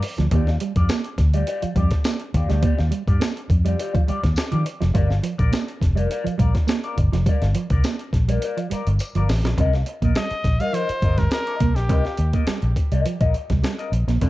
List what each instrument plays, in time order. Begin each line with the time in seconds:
0.03 muted clean electric guitar stroke, open hi-hat
0.18 fingered electric bass D2, clean electric guitar F3, muted clean electric guitar stroke, snare, closed hi-hat
0.31 fingered electric bass D#2, clean electric guitar A#3 F4 G4 D5, kick, closed hi-hat
0.47 muted clean electric guitar stroke, snare
0.60 clean electric guitar G3, muted clean electric guitar stroke, closed hi-hat
0.76 fingered electric bass F2, clean electric guitar F4 G4 D5, kick, closed hi-hat
0.89 clean electric guitar A#3, muted clean electric guitar stroke, snare, closed hi-hat, tambourine
1.04 muted clean electric guitar stroke, closed hi-hat
1.18 fingered electric bass D2, muted clean electric guitar stroke, kick, snare, closed hi-hat
1.34 clean electric guitar G3 F4 G4 D5, closed hi-hat
1.47 clean electric guitar F4 G4 D5, muted clean electric guitar stroke, closed hi-hat
1.62 clean electric guitar F3, muted clean electric guitar stroke, muted fingered electric bass stroke, closed hi-hat
1.76 fingered electric bass F2, clean electric guitar G3 F4 G4 D5, kick, closed hi-hat
1.91 muted clean electric guitar stroke, kick, snare, closed hi-hat
2.04 clean electric guitar A#3, muted clean electric guitar stroke, snare, closed hi-hat, tambourine
2.20 muted clean electric guitar stroke, closed hi-hat
2.34 fingered electric bass D#2, clean electric guitar F4 G4 D5, muted clean electric guitar stroke, kick, closed hi-hat
2.49 fingered electric bass D2, clean electric guitar G3 F4 G4 D5, snare, closed hi-hat
2.62 clean electric guitar A#3 F4 G4 D5, kick, closed hi-hat
2.79 fingered electric bass D#2, muted clean electric guitar stroke, snare
2.91 clean electric guitar G3, muted clean electric guitar stroke, closed hi-hat
3.08 fingered electric bass G2, clean electric guitar F4 G4 D5, kick, closed hi-hat
3.20 clean electric guitar A#3, muted clean electric guitar stroke, snare, closed hi-hat, tambourine
3.37 muted clean electric guitar stroke, closed hi-hat
3.49 fingered electric bass F2, muted clean electric guitar stroke, kick, closed hi-hat
3.65 clean electric guitar G3 F4 G4 D5, closed hi-hat
3.78 clean electric guitar F4 G4 D5, muted clean electric guitar stroke, closed hi-hat
3.94 clean electric guitar F3, muted clean electric guitar stroke, kick, closed hi-hat
4.08 clean electric guitar G3 F4 G4 D5, muted fingered electric bass stroke, closed hi-hat
4.23 fingered electric bass D#2, muted clean electric guitar stroke, kick, snare, closed hi-hat
4.36 muted clean electric guitar stroke, snare, closed hi-hat, tambourine
4.51 fingered electric bass D#3, clean electric guitar F3 F4 G4 D5, closed hi-hat
4.66 muted clean electric guitar stroke, closed hi-hat
4.80 fingered electric bass F1, clean electric guitar F3, muted clean electric guitar stroke, snare, closed hi-hat
4.94 fingered electric bass G1, clean electric guitar G3 F4 A#4 D5, kick, closed hi-hat
5.10 muted clean electric guitar stroke, snare
5.23 clean electric guitar F3, muted clean electric guitar stroke, closed hi-hat
5.38 fingered electric bass A#1, clean electric guitar F4 A#4 D5, kick, closed hi-hat
5.52 clean electric guitar A#3, muted clean electric guitar stroke, snare, closed hi-hat, tambourine
5.68 muted clean electric guitar stroke, closed hi-hat
5.81 fingered electric bass F1, muted clean electric guitar stroke, kick, snare, closed hi-hat
5.95 clean electric guitar G3 F4 A#4 D5, closed hi-hat
6.10 clean electric guitar F4 A#4 D5, muted clean electric guitar stroke, closed hi-hat
6.24 clean electric guitar F3, muted clean electric guitar stroke, muted fingered electric bass stroke, closed hi-hat
6.38 fingered electric bass A#1, clean electric guitar G3 F4 A#4 D5, kick, closed hi-hat
6.54 muted clean electric guitar stroke, kick, snare, closed hi-hat
6.67 clean electric guitar A#3, muted clean electric guitar stroke, snare, closed hi-hat, tambourine
6.84 clean electric guitar F4 A#4 D5, closed hi-hat
6.98 fingered electric bass G1, muted clean electric guitar stroke, kick, closed hi-hat
7.12 fingered electric bass F1, clean electric guitar F3, muted clean electric guitar stroke, snare, closed hi-hat
7.26 clean electric guitar G3 F4 A#4 D5, kick, closed hi-hat
7.42 fingered electric bass G1, muted clean electric guitar stroke, snare, closed hi-hat
7.55 clean electric guitar F3, muted clean electric guitar stroke, closed hi-hat
7.70 fingered electric bass C2, clean electric guitar F4 A#4 D5, kick, closed hi-hat
7.84 clean electric guitar A#3, muted clean electric guitar stroke, snare, closed hi-hat, tambourine
7.99 muted clean electric guitar stroke, closed hi-hat
8.13 fingered electric bass A#1, muted clean electric guitar stroke, kick, snare, closed hi-hat
8.28 clean electric guitar G3 F4 A#4 D5, closed hi-hat
8.42 clean electric guitar F4 A#4 D5, muted clean electric guitar stroke, closed hi-hat
8.57 clean electric guitar F3, muted clean electric guitar stroke, closed hi-hat
8.70 clean electric guitar G3 F4 A#4 D5, muted fingered electric bass stroke, closed hi-hat
8.87 fingered electric bass G1, muted clean electric guitar stroke, closed hi-hat
8.99 muted clean electric guitar stroke, closed hi-hat, tambourine
9.15 fingered electric bass G1, clean electric guitar F3 F4 A#4 D5, closed hi-hat
9.29 fingered electric bass A1, muted clean electric guitar stroke, snare, open hi-hat
9.44 fingered electric bass A#1, clean electric guitar F3, muted clean electric guitar stroke, snare, closed hi-hat
9.57 fingered electric bass C2, clean electric guitar C4 F4 A#4 D#5, kick, closed hi-hat
9.73 muted clean electric guitar stroke, snare
9.86 muted clean electric guitar stroke, closed hi-hat
10.02 fingered electric bass A#1, clean electric guitar A#3 F4 A#4 D#5, kick, closed hi-hat
10.15 clean electric guitar G3, trumpet D#5, muted clean electric guitar stroke, snare, closed hi-hat
10.31 muted fingered electric bass stroke, muted clean electric guitar stroke, closed hi-hat
10.44 fingered electric bass A#1, muted clean electric guitar stroke, kick, snare, closed hi-hat
10.60 clean electric guitar G3 F4 A#4 D#5, trumpet F5, closed hi-hat
10.73 clean electric guitar F3 F4 A#4 D#5, trumpet C5, closed hi-hat
10.89 muted fingered electric bass stroke, muted clean electric guitar stroke, closed hi-hat
11.02 fingered electric bass G1, clean electric guitar F4 A#4 D#5, muted clean electric guitar stroke, kick, closed hi-hat
11.18 clean electric guitar G3, trumpet A#4, muted clean electric guitar stroke, kick, snare, closed hi-hat
11.31 trumpet A#4, muted clean electric guitar stroke, snare, closed hi-hat
11.47 clean electric guitar F4 A#4 D#5, closed hi-hat
11.60 fingered electric bass C2, clean electric guitar A#3, muted clean electric guitar stroke, kick, closed hi-hat
11.76 fingered electric bass A#1, trumpet G4, muted clean electric guitar stroke, snare, closed hi-hat
11.89 fingered electric bass C2, clean electric guitar C4 F4 A#4 D#5, kick, closed hi-hat
12.05 muted clean electric guitar stroke, snare
12.17 fingered electric bass D#2, muted clean electric guitar stroke, closed hi-hat
12.33 clean electric guitar A#3 F4 A#4 D#5, kick, closed hi-hat
12.47 clean electric guitar G3, muted fingered electric bass stroke, snare, closed hi-hat
12.62 fingered electric bass A#1, muted clean electric guitar stroke, closed hi-hat
12.76 muted clean electric guitar stroke, kick, closed hi-hat
12.92 fingered electric bass C2, clean electric guitar G3 F4 A#4 D#5, closed hi-hat
13.06 clean electric guitar F3, muted clean electric guitar stroke, closed hi-hat
13.21 fingered electric bass A#1, clean electric guitar F4 A#4 D#5, kick, closed hi-hat
13.34 muted clean electric guitar stroke, closed hi-hat
13.50 fingered electric bass C2, clean electric guitar G3, muted clean electric guitar stroke, kick, snare, closed hi-hat
13.63 clean electric guitar G3, muted clean electric guitar stroke, snare, closed hi-hat
13.79 clean electric guitar F4 A#4 D#5, closed hi-hat
13.92 fingered electric bass A#1, muted clean electric guitar stroke, closed hi-hat
14.07 fingered electric bass A#1, clean electric guitar A#3, muted clean electric guitar stroke, snare, closed hi-hat
14.21 fingered electric bass C2, clean electric guitar C4 F4 A#4 D#5, kick, closed hi-hat